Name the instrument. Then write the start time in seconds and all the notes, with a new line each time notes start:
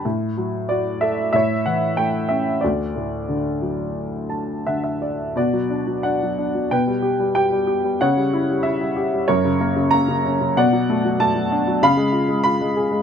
upright piano
0.05 A2
0.37 F#3
0.69 F#4 D5
1.01 A4 E5
1.33 A2 C#5 E5
1.66 E3 F#5
1.97 A3 G5
2.29 C#4 E5
2.61 D2 F#4 D5
2.96 A2
3.28 D3
3.62 F#3
4.30 A5
4.67 D3 E5 F#5
4.84 E5
5.02 D5
5.36 B2 F#4 D5
5.53 F#3
5.70 D4
5.87 F#3
6.03 D4 F#5
6.23 F#3
6.39 D4
6.54 F#3
6.71 B2 B4 G5
6.87 G3
7.02 G4
7.20 G3
7.35 G4 G5
7.52 G3
7.67 G4
7.84 G3
8.01 C#3 C#5 F#5
8.17 G3
8.33 E4
8.51 G3
8.63 E4 E5
8.81 G3
8.96 G4
9.14 G3
9.28 F#2 A#4 C#5
9.45 C#3
9.61 A#3
9.76 C#3
9.91 A#3 A#5
10.08 C#3
10.26 C#4
10.41 C#3
10.56 B2 D5 F#5
10.73 F#3
10.90 A3
11.05 F#3
11.20 A3 A5
11.35 F#3
11.52 D4
11.67 F#3
11.83 C#3 F5 B5
11.97 G#3
12.12 F4
12.29 G#3
12.44 F4 B5
12.61 G#3
12.77 G#4
12.92 G#3